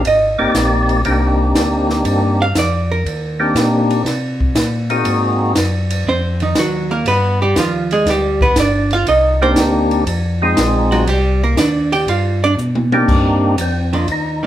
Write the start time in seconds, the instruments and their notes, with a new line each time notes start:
0.05 tonewheel organ G#1, hollow-body jazz guitar D#5, ride
0.38 tonewheel organ G#1 A#3 C4 D#4 G4 D5
0.54 tonewheel organ A#1, snare, hi-hat pedal, ride
0.89 ride
1.05 tonewheel organ C2 A#3 C4 D4 D#4 G4, ride
1.55 tonewheel organ D2, snare, hi-hat pedal, ride
1.90 snare
2.04 tonewheel organ G2, ride
2.42 hollow-body jazz guitar F5
2.55 tonewheel organ F2, hollow-body jazz guitar D5, snare, hi-hat pedal, ride
2.92 hollow-body jazz guitar A#4
3.05 tonewheel organ D#2, ride
3.40 tonewheel organ A#3 C4 D4 D#4 G4
3.54 tonewheel organ A#2, snare, hi-hat pedal, ride
3.90 ride
4.05 tonewheel organ C3, snare, ride
4.40 kick
4.55 tonewheel organ A#2, snare, hi-hat pedal, ride
4.90 tonewheel organ A#3 C4 D#4 F#4 G#4, ride
5.05 tonewheel organ G#2, ride
5.55 tonewheel organ F#2, snare, hi-hat pedal, ride
5.90 ride
6.06 tonewheel organ F2, hollow-body jazz guitar C4 C5
6.40 hollow-body jazz guitar D#3 D#4, ride
6.55 tonewheel organ D#2, hollow-body jazz guitar F#3 F#4, snare, hi-hat pedal, ride
6.91 hollow-body jazz guitar A#3 A#4
7.05 tonewheel organ G2, hollow-body jazz guitar B3 B4, ride
7.42 hollow-body jazz guitar G3 G4
7.56 tonewheel organ D#2, hollow-body jazz guitar F3 F4, snare, hi-hat pedal, ride
7.91 hollow-body jazz guitar G#3 G#4, ride
8.06 tonewheel organ D2, hollow-body jazz guitar G3, snare, ride
8.10 hollow-body jazz guitar G4
8.41 hollow-body jazz guitar B3 B4, kick
8.56 tonewheel organ G1, hollow-body jazz guitar D4 D5, snare, hi-hat pedal, ride
8.91 hollow-body jazz guitar F4 F5, ride
9.07 tonewheel organ C2, hollow-body jazz guitar D#4 D#5, ride
9.42 tonewheel organ A#3 C4 D4 D#4 G4, hollow-body jazz guitar C4 C5
9.56 tonewheel organ D2, snare, hi-hat pedal, ride
9.91 ride
10.07 tonewheel organ F2, ride
10.42 tonewheel organ G#3 C4 D#4 F4 G#4
10.57 tonewheel organ A#1, snare, hi-hat pedal, ride
10.92 hollow-body jazz guitar F#3 F#4, ride
11.07 tonewheel organ C2, hollow-body jazz guitar G3 G4, ride
11.43 hollow-body jazz guitar A#3 A#4
11.57 tonewheel organ D#2, hollow-body jazz guitar D4 D5, snare, hi-hat pedal, ride
11.92 hollow-body jazz guitar G4 G5, ride
12.07 tonewheel organ G2, hollow-body jazz guitar F4 F5, ride
12.44 hollow-body jazz guitar D4 D5
12.57 tonewheel organ B2, hi-hat pedal
12.75 high tom
12.92 tonewheel organ A#3 C4 D4 D#4 G4, high tom
13.08 tonewheel organ G2, kick, crash
13.58 tonewheel organ F2 C4, hi-hat pedal, ride
13.93 hollow-body jazz guitar D#3 A#3 D4, tonewheel organ F4, ride
14.08 tonewheel organ D#2 D#4, ride
14.43 hollow-body jazz guitar D#3